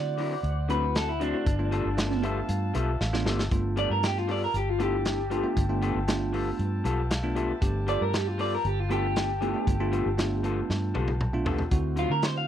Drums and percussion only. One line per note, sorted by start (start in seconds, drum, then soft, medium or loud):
0.18 open hi-hat medium
0.44 closed hi-hat medium
0.70 closed hi-hat medium
0.95 snare loud
0.95 closed hi-hat medium
1.21 closed hi-hat medium
1.46 kick loud
1.46 closed hi-hat medium
1.72 closed hi-hat medium
1.98 snare loud
1.98 closed hi-hat medium
2.11 snare soft
2.23 closed hi-hat medium
2.49 closed hi-hat medium
2.75 closed hi-hat medium
3.01 snare medium
3.14 snare medium
3.26 snare medium
3.39 snare medium
3.51 kick loud
3.51 closed hi-hat medium
3.77 closed hi-hat medium
4.03 snare loud
4.03 closed hi-hat medium
4.16 snare soft
4.29 open hi-hat medium
4.54 closed hi-hat medium
4.80 closed hi-hat medium
5.05 snare loud
5.05 closed hi-hat medium
5.31 closed hi-hat medium
5.57 kick loud
5.57 closed hi-hat medium
5.82 closed hi-hat medium
6.08 snare loud
6.08 closed hi-hat medium
6.34 open hi-hat medium
6.59 closed hi-hat medium
6.85 closed hi-hat medium
7.11 snare loud
7.11 closed hi-hat medium
7.36 closed hi-hat medium
7.62 kick loud
7.62 closed hi-hat medium
7.88 closed hi-hat medium
8.14 snare loud
8.14 closed hi-hat medium
8.39 open hi-hat medium
8.65 closed hi-hat medium
8.91 closed hi-hat medium
9.16 snare loud
9.16 closed hi-hat medium
9.42 closed hi-hat medium
9.67 kick loud
9.67 closed hi-hat medium
9.93 closed hi-hat medium
10.18 snare loud
10.18 closed hi-hat medium
10.44 closed hi-hat medium
10.70 snare medium
10.95 high tom medium
11.08 high tom medium
11.21 mid tom medium
11.46 floor tom loud
11.58 floor tom medium
11.71 kick loud
11.71 closed hi-hat medium
11.97 closed hi-hat medium
12.23 snare loud
12.23 closed hi-hat medium